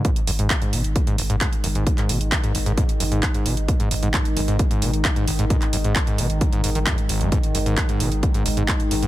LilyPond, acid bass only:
\new Staff \with { instrumentName = "Acid bass" } { \clef bass \time 4/4 \key gis \minor \tempo 4 = 132 r8 fis,16 gis,16 r16 gis,16 b,16 r8 gis,16 gis,,16 gis,16 gis,16 r16 fis,16 gis,16 | r16 gis,16 b,16 r8 gis,16 gis,,16 gis,16 gis,16 r16 fis,16 gis,16 r16 gis,16 b,16 r16 | r16 gis,16 gis,,16 gis,16 gis,16 r16 fis,16 gis,16 r16 gis,16 b,16 r8 gis,16 gis,,16 gis,16 | gis,16 r16 fis,16 gis,16 r16 gis,16 b,16 r8 gis,16 gis,16 dis16 fis,16 r16 gis,,16 gis,16 |
gis,16 r16 fis,16 gis,16 r16 gis,16 b,16 r8 gis,16 gis,,16 gis,16 gis,16 r16 fis,16 gis,16 | }